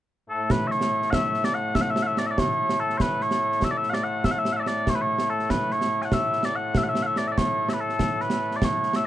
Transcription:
0.30 bagpipes A2 A3 A4
0.50 bagpipes B4, concert bass drum, snare
0.67 bagpipes C#5 E5, snare
0.81 snare
1.02 snare
1.10 bagpipes E5 F#5, concert bass drum, snare
1.34 snare
1.44 bagpipes D5, snare
1.54 bagpipes F#5
1.75 bagpipes E5, concert bass drum, snare
1.81 bagpipes F#5
1.90 bagpipes E5
1.96 snare
2.03 bagpipes F#5
2.07 bagpipes E5
2.17 bagpipes D5, snare
2.26 bagpipes E5
2.31 bagpipes D5
2.38 bagpipes C#5, concert bass drum, snare
2.69 snare
2.80 bagpipes A4
2.90 snare
2.98 bagpipes B4 C#5, concert bass drum, snare
3.21 bagpipes C#5, snare
3.31 snare
3.52 snare
3.62 bagpipes E5, concert bass drum, snare
3.71 bagpipes D5
3.77 bagpipes E5
3.83 snare
3.90 bagpipes D5 F#5, snare
4.04 bagpipes F#5
4.24 bagpipes E5, concert bass drum, snare
4.31 bagpipes F#5
4.39 bagpipes E5
4.45 snare
4.53 bagpipes F#5
4.57 bagpipes D5 E5
4.62 bagpipes E5
4.66 bagpipes D5, snare
4.87 bagpipes C#5, concert bass drum, snare
4.95 bagpipes B4
5.01 bagpipes C#5
5.19 snare
5.30 bagpipes A4
5.39 snare
5.50 bagpipes B4, concert bass drum, snare
5.71 bagpipes C#5, snare
5.81 snare
6.02 bagpipes F#5 G#5, snare
6.12 bagpipes E5, concert bass drum, snare
6.33 snare
6.43 bagpipes D5, snare
6.56 bagpipes F#5
6.75 bagpipes E5, concert bass drum, snare
6.83 bagpipes F#5
6.89 bagpipes E5
6.95 snare
7.03 bagpipes E5 F#5
7.16 bagpipes D5, snare
7.27 bagpipes E5
7.32 bagpipes D5
7.37 bagpipes C#5, concert bass drum, snare
7.69 bagpipes E5, snare
7.73 bagpipes B4
7.81 bagpipes A4
7.89 snare
7.99 concert bass drum, snare
8.20 bagpipes B4, snare
8.30 snare
8.51 snare
8.56 bagpipes D5
8.62 bagpipes C#5, concert bass drum, snare
8.83 snare
8.93 bagpipes E5, snare

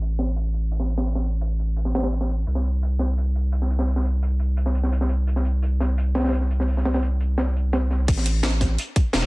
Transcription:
Already playing: sub bass A1
0.02 closed hi-hat
0.19 snare, closed hi-hat
0.36 closed hi-hat
0.54 closed hi-hat
0.71 closed hi-hat
0.79 snare
0.90 closed hi-hat
0.97 snare
1.06 open hi-hat
1.15 snare
1.24 closed hi-hat
1.41 closed hi-hat
1.59 closed hi-hat
1.76 closed hi-hat
1.85 snare
1.95 snare, closed hi-hat
1.98 snare, closed hi-hat
2.03 snare, closed hi-hat
2.12 closed hi-hat
2.21 snare
2.29 closed hi-hat
2.47 sub bass C2, closed hi-hat
2.55 snare
2.65 closed hi-hat
2.83 closed hi-hat
2.99 snare, closed hi-hat
3.18 closed hi-hat
3.36 closed hi-hat
3.52 closed hi-hat
3.62 snare
3.70 closed hi-hat
3.79 snare
3.88 open hi-hat
3.96 snare
4.05 closed hi-hat
4.22 closed hi-hat
4.40 closed hi-hat
4.57 closed hi-hat
4.66 snare
4.75 closed hi-hat
4.83 snare
4.92 closed hi-hat
5.01 snare
5.09 closed hi-hat
5.27 closed hi-hat
5.36 snare
5.45 closed hi-hat
5.62 closed hi-hat
5.80 snare, closed hi-hat
5.98 closed hi-hat
6.15 snare, closed hi-hat
6.20 snare, closed hi-hat
6.24 snare, closed hi-hat
6.29 snare, closed hi-hat
6.33 closed hi-hat
6.41 snare
6.51 closed hi-hat
6.60 snare
6.68 open hi-hat
6.77 snare
6.85 snare, closed hi-hat
6.94 snare, closed hi-hat
7.02 closed hi-hat
7.20 closed hi-hat
7.38 snare, closed hi-hat
7.47 snare
7.56 closed hi-hat
7.73 snare, closed hi-hat
7.91 snare, closed hi-hat
8.08 sub bass A1, kick, closed hi-hat, crash
8.17 snare
8.25 closed hi-hat
8.43 snare, closed hi-hat
8.61 kick, snare, closed hi-hat, open hi-hat
8.78 closed hi-hat
8.96 kick, closed hi-hat
9.13 sub bass E1, snare, closed hi-hat
9.22 snare

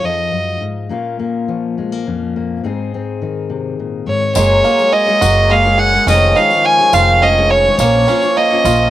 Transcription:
Already playing: steel-string acoustic guitar F3 G#3 D#4 F4
0.03 steel-string acoustic guitar F2, fiddle D#5
0.32 steel-string acoustic guitar F#2
0.61 steel-string acoustic guitar G#2
0.89 steel-string acoustic guitar A#2 A#3 C#4 F4
1.19 steel-string acoustic guitar A#3
1.48 steel-string acoustic guitar F3 C#4
1.78 steel-string acoustic guitar G#3
1.92 steel-string acoustic guitar A#3
2.07 steel-string acoustic guitar F2 C#4
2.36 steel-string acoustic guitar A#3
2.63 steel-string acoustic guitar G#2 C4 D#4 G#4
2.94 steel-string acoustic guitar C4
3.22 steel-string acoustic guitar D#3 D#4
3.50 steel-string acoustic guitar C3
3.79 steel-string acoustic guitar A#2
4.07 steel-string acoustic guitar G#2, fiddle C#5
4.35 upright bass F#1, steel-string acoustic guitar F#3 G#3 A#3 G#4 C#5, harmonium F#3 G#3 A#3, five-string banjo G#3, fiddle C#5, tambourine
4.63 steel-string acoustic guitar G#3 A#3 G#4 C#5, five-string banjo A#3, tambourine
4.78 steel-string acoustic guitar G#3 G#4 C#5, tambourine
4.93 five-string banjo G#3, fiddle D#5
5.06 steel-string acoustic guitar G#3 G#4 C#5
5.21 upright bass F#1, steel-string acoustic guitar F#3 G#3 A#3 G#4 C#5, five-string banjo F#4, tambourine
5.49 five-string banjo G#3, steel-string acoustic guitar G#3 A#3 G#4 C#5, fiddle F5
5.64 steel-string acoustic guitar G#3 G#4 C#5
5.78 five-string banjo G#4, fiddle F#5
5.92 steel-string acoustic guitar G#3 G#4 C#5
6.07 upright bass F1, steel-string acoustic guitar F2 D#3 F3 G#3 G#4 C#5, harmonium D#3 F3 C#4, five-string banjo C#4, fiddle D#5, tambourine
6.36 steel-string acoustic guitar D#3 G#3 G#4 C#5, five-string banjo D#4, fiddle F5, tambourine
6.50 steel-string acoustic guitar D#3 G#3 G#4 C#5, tambourine
6.65 five-string banjo C#4, fiddle G#5
6.78 steel-string acoustic guitar D#3 G#3 G#4 C#5
6.93 upright bass F1, steel-string acoustic guitar F2 D#3 F3 G#3 G#4 C#5, five-string banjo F4, fiddle F5, tambourine
7.22 steel-string acoustic guitar D#3 G#3 G#4, five-string banjo C#4, fiddle D#5
7.26 steel-string acoustic guitar C#5
7.37 steel-string acoustic guitar D#3 G#3 G#4 C#5
7.51 fiddle C#5, five-string banjo C#5
7.65 steel-string acoustic guitar D#3 G#3 G#4 C#5
7.78 upright bass A#1, steel-string acoustic guitar A#2 A#3 C#4 F4 C#5, harmonium F3 A#3, five-string banjo A#3, fiddle C#5, tambourine
8.07 steel-string acoustic guitar A#3 C#4 F4 C#5, five-string banjo C#4, tambourine
8.21 steel-string acoustic guitar C#4 F4 C#5, tambourine
8.37 five-string banjo A#3, fiddle D#5
8.50 steel-string acoustic guitar C#4 F4 C#5
8.65 upright bass A#1, steel-string acoustic guitar A#2 A#3 C#4 F4 C#5, five-string banjo F4, tambourine

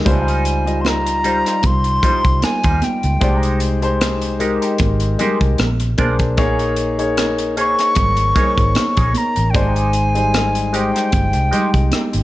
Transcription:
0.05 fingered electric bass C#2, clean electric guitar F#3 D4 E4 B4, grand piano G3 D#4 F4 C5, kick, closed hi-hat, muted conga
0.10 flute G#5
0.21 clean electric guitar G3 D#4 F4 C5
0.28 closed hi-hat
0.45 closed hi-hat
0.66 grand piano G3 D#4 F4 D#5, muted clean electric guitar stroke, closed hi-hat
0.81 flute C6, muted clean electric guitar stroke, high conga
0.86 flute A#5, cross-stick, closed hi-hat
1.05 muted clean electric guitar stroke, closed hi-hat
1.24 clean electric guitar G3 D#4 F4 C5, grand piano G3 D#4 F4 C5, closed hi-hat
1.45 clean electric guitar G3 D#4 F4 C5, cross-stick, closed hi-hat
1.63 fingered electric bass C2, flute C6, kick, closed hi-hat, muted conga, low conga
1.84 muted clean electric guitar stroke, closed hi-hat
2.03 clean electric guitar G3 D#4 F4 C5, grand piano G3 D#4 F4 C5, kick, closed hi-hat, muted conga, low conga
2.25 fingered electric bass C2, muted clean electric guitar stroke, kick, closed hi-hat
2.42 flute G#5, muted clean electric guitar stroke, cross-stick, closed hi-hat, high conga
2.64 fingered electric bass D#2, clean electric guitar G3 D#4 F4 C5, kick, closed hi-hat
2.82 flute G5, muted clean electric guitar stroke, cross-stick, closed hi-hat, high conga
3.03 fingered electric bass C#2, muted clean electric guitar stroke, closed hi-hat
3.21 fingered electric bass C2, clean electric guitar G3 D4 F#4 D5, grand piano G#3 D#4 G4 C5, kick, closed hi-hat, muted conga
3.37 clean electric guitar G#3 D#4 G4 D#5
3.43 closed hi-hat
3.60 closed hi-hat
3.82 grand piano G#3 D#4 G4 C5, muted clean electric guitar stroke, closed hi-hat
4.01 cross-stick, closed hi-hat, high conga
4.22 muted clean electric guitar stroke, closed hi-hat
4.39 grand piano G#3 D#4 G4 A#4, clean electric guitar G#3 D#4 G4 D#5, closed hi-hat
4.62 clean electric guitar G#3 D#4 G4 C5, closed hi-hat
4.78 fingered electric bass G#1, kick, closed hi-hat, muted conga
5.00 muted clean electric guitar stroke, closed hi-hat
5.18 grand piano G#3 D#4 G4 A#4, clean electric guitar G#3 D#4 G4 C5, closed hi-hat, muted conga, low conga
5.41 fingered electric bass C2, muted clean electric guitar stroke, kick, closed hi-hat
5.58 fingered electric bass A#1, muted clean electric guitar stroke, cross-stick, closed hi-hat, high conga
5.80 muted clean electric guitar stroke, closed hi-hat
5.98 fingered electric bass B1, clean electric guitar G#3 D4 F4 D5, grand piano A#3 D4 G#4 C5, kick, closed hi-hat, high conga
6.19 muted clean electric guitar stroke, kick, closed hi-hat
6.37 fingered electric bass A#1, grand piano A#3 D#4 G#4 C#5, clean electric guitar A#3 D#4 G#4 C#5, kick, closed hi-hat, muted conga
6.59 closed hi-hat
6.76 closed hi-hat
6.98 grand piano A#3 D#4 G#4 C#5, muted clean electric guitar stroke, closed hi-hat
7.17 muted clean electric guitar stroke, cross-stick, closed hi-hat, high conga
7.38 muted clean electric guitar stroke, closed hi-hat
7.56 grand piano A#3 D#4 G#4 C5, clean electric guitar A#3 D#4 G#4 C#5, closed hi-hat
7.61 grand piano C#5, flute C#6
7.78 clean electric guitar A#3 D#4 G#4 C#5, cross-stick, closed hi-hat
7.95 fingered electric bass G#1, kick, closed hi-hat, muted conga, low conga
8.17 muted clean electric guitar stroke, closed hi-hat
8.35 clean electric guitar A#3 D#4 G#4 C#5, grand piano A#3 D#4 G#4 C5, kick, closed hi-hat, muted conga, low conga
8.44 grand piano C#5
8.58 fingered electric bass G#1, kick, closed hi-hat
8.75 muted clean electric guitar stroke, muted fingered electric bass stroke, cross-stick, closed hi-hat, high conga
8.97 fingered electric bass A#1, clean electric guitar A#3 D#4 G#4 C#5, kick, closed hi-hat
9.14 flute A#5, closed hi-hat, high conga
9.36 fingered electric bass A1, muted clean electric guitar stroke, closed hi-hat
9.50 clean electric guitar G3 D4, flute G5
9.54 fingered electric bass G#1, grand piano G#3 D#4 C5, clean electric guitar F#4 D5, flute G#5, kick, closed hi-hat, muted conga
9.68 clean electric guitar G#3 D#4 G4 D#5
9.76 closed hi-hat
9.93 closed hi-hat
10.15 grand piano G3 G#3 D#4 C5, muted clean electric guitar stroke, closed hi-hat
10.34 cross-stick, closed hi-hat, high conga
10.55 muted clean electric guitar stroke, closed hi-hat
10.72 grand piano G#3 D#4 G4 C5, clean electric guitar G#3 D#4 G4 D#5, flute G5, closed hi-hat
10.94 clean electric guitar G#3 D#4 G4 C5, cross-stick, closed hi-hat
11.12 fingered electric bass G1, kick, closed hi-hat, muted conga
11.33 fingered electric bass C2, muted clean electric guitar stroke, closed hi-hat
11.51 clean electric guitar G#3 D#4 G4 C5, grand piano G#3 D#4 G4 D#5, closed hi-hat, low conga
11.73 fingered electric bass C2, muted clean electric guitar stroke, kick, closed hi-hat
11.92 cross-stick, closed hi-hat, high conga
12.13 fingered electric bass G#1, muted clean electric guitar stroke, closed hi-hat, high conga

